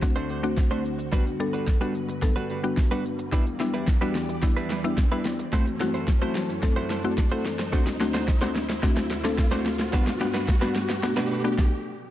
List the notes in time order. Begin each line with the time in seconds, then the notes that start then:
Already playing: D2 D3 F#4 C5, riser
0.02 A3 C4 D4 F#4, muted clean electric guitar stroke, kick, snare, closed hi-hat, shaker
0.16 A3 D4 F#4 C5, shaker
0.30 A3 D4 F#4 C5, closed hi-hat, shaker
0.43 A3 C4 D4 F#4, shaker
0.57 muted clean electric guitar stroke, kick, snare, closed hi-hat, shaker
0.71 A3 C4 D4 F#4 C5, shaker
0.85 muted clean electric guitar stroke, closed hi-hat, shaker
0.98 muted clean electric guitar stroke, shaker
1.12 G2 G3 B3 D4 F#4 B4, kick, snare, closed hi-hat, shaker
1.26 muted clean electric guitar stroke, shaker
1.40 G3 B3 D4 A4, muted clean electric guitar stroke, closed hi-hat, shaker
1.53 G3 D4 F#4 B4, shaker
1.67 muted clean electric guitar stroke, kick, snare, closed hi-hat, shaker
1.81 G3 B3 D4 F#4 B4, shaker
1.95 muted clean electric guitar stroke, closed hi-hat, shaker
2.09 muted clean electric guitar stroke, shaker
2.22 G3 B3 D4 A4, muted clean electric guitar stroke, kick, snare, closed hi-hat, shaker
2.36 G3 D4 F#4 B4, shaker
2.50 G3 D4 F#4 B4, closed hi-hat, shaker
2.63 G3 B3 D4 F#4, muted clean electric guitar stroke, shaker
2.77 muted clean electric guitar stroke, kick, snare, closed hi-hat, shaker
2.91 G3 B3 D4 F#4 B4, shaker
3.05 closed hi-hat, shaker
3.19 muted clean electric guitar stroke, shaker
3.32 E2 E3 G3 B3 D4 E4 G4 B4 D5, kick, snare, closed hi-hat, tambourine, shaker
3.46 muted clean electric guitar stroke, shaker
3.60 G3 B3 D4 E4, muted clean electric guitar stroke, snare, closed hi-hat, tambourine, shaker
3.74 G3 D4 E4 B4, shaker
3.88 kick, snare, closed hi-hat, tambourine, shaker
4.01 G3 B3 D4 E4 F#4 B4, shaker
4.15 muted clean electric guitar stroke, snare, closed hi-hat, tambourine, shaker
4.29 muted clean electric guitar stroke, shaker
4.43 G3 B3 D4 E4, muted clean electric guitar stroke, kick, snare, closed hi-hat, tambourine, shaker
4.56 G3 D4 E4 B4, shaker
4.70 G3 D4 E4 B4, snare, closed hi-hat, tambourine, shaker
4.84 G3 B3 D4 E4, shaker
4.98 muted clean electric guitar stroke, kick, snare, closed hi-hat, tambourine, shaker
5.12 G3 B3 D4 E4 B4, shaker
5.25 muted clean electric guitar stroke, snare, closed hi-hat, tambourine, shaker
5.39 muted clean electric guitar stroke, shaker
5.53 F#2 A3 C4 E4 F#4 A4 C5, kick, snare, closed hi-hat, tambourine, shaker
5.67 muted clean electric guitar stroke, shaker
5.80 A3 C4 E4 F#4, muted clean electric guitar stroke, snare, open hi-hat, tambourine, shaker
5.94 A3 E4 F#4 C5, shaker
6.08 muted clean electric guitar stroke, kick, snare, closed hi-hat, tambourine, shaker
6.22 A3 C4 E4 F#4 C5, shaker
6.35 snare, open hi-hat, tambourine, shaker
6.49 muted clean electric guitar stroke, shaker
6.63 A3 C4 E4 A4, muted clean electric guitar stroke, kick, snare, closed hi-hat, tambourine, shaker
6.76 A3 E4 F#4 C5, shaker
6.90 A3 E4 F#4 C5, snare, open hi-hat, shaker
7.04 A3 C4 E4 F#4, muted clean electric guitar stroke, shaker
7.18 muted clean electric guitar stroke, kick, snare, closed hi-hat, tambourine, shaker
7.31 A3 C4 E4 F#4 A4 C5, shaker
7.45 muted clean electric guitar stroke, snare, open hi-hat, tambourine, shaker
7.59 muted clean electric guitar stroke, snare, shaker
7.72 D2 D3 A3 C4 D4 F#4 C5, kick, snare, closed hi-hat, tambourine, shaker
7.86 muted clean electric guitar stroke, snare, shaker
8.00 A3 C4 D4 F#4, muted clean electric guitar stroke, snare, open hi-hat, tambourine, shaker
8.14 A3 D4 F#4 C5, snare, shaker
8.28 muted clean electric guitar stroke, kick, snare, closed hi-hat, tambourine, shaker
8.41 A3 C4 D4 F#4 C5, snare, shaker
8.55 snare, open hi-hat, tambourine, shaker
8.69 muted clean electric guitar stroke, snare, shaker
8.83 A3 C4 D4 F#4, muted clean electric guitar stroke, kick, snare, closed hi-hat, tambourine, shaker
8.97 muted clean electric guitar stroke, snare, shaker
9.11 snare, open hi-hat, tambourine, shaker
9.24 A3 C4 D4 A4, muted clean electric guitar stroke, snare, shaker
9.38 muted clean electric guitar stroke, kick, snare, closed hi-hat, tambourine, shaker
9.51 A3 C4 D4 F#4 C5, snare, shaker
9.66 snare, open hi-hat, tambourine, shaker
9.79 muted clean electric guitar stroke, snare, shaker
9.93 G2 G3 B3 D4 F#4 B4, kick, snare, closed hi-hat, tambourine, shaker
10.07 snare, shaker
10.20 G3 B3 D4 F#4, muted clean electric guitar stroke, snare, open hi-hat, tambourine, shaker
10.34 B3 D4 F#4 B4, snare, shaker
10.48 muted clean electric guitar stroke, kick, snare, closed hi-hat, tambourine, shaker
10.61 G3 B3 D4 F#4 B4, snare, shaker
10.75 muted clean electric guitar stroke, snare, open hi-hat, tambourine, shaker
10.89 muted clean electric guitar stroke, snare, shaker
11.03 B2 A3 B3 D4 F#4, muted clean electric guitar stroke, snare, closed hi-hat, tambourine, shaker
11.17 A3 D4 F#4 B4, snare, shaker
11.30 A3 D4 F#4 B4, open hi-hat, tambourine, shaker
11.44 A3 B3 D4 F#4, muted clean electric guitar stroke, shaker
11.59 kick, snare